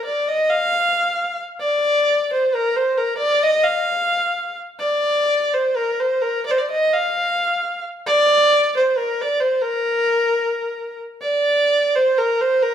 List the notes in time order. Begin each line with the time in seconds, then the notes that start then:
0.05 D5
0.28 D#5
0.49 F5
1.60 D5
2.33 C5
2.55 A#4
2.76 C5
2.97 A#4
3.17 D5
3.43 D#5
3.64 F5
4.79 D5
5.54 C5
5.76 A#4
5.99 C5
6.22 A#4
6.46 D5
6.51 C5
6.58 D5
6.70 D#5
6.94 F5
8.06 D5
8.77 C5
8.98 A#4
9.22 D5
9.40 C5
9.62 A#4
11.21 D5
11.96 C5
12.18 A#4
12.41 C5
12.62 A#4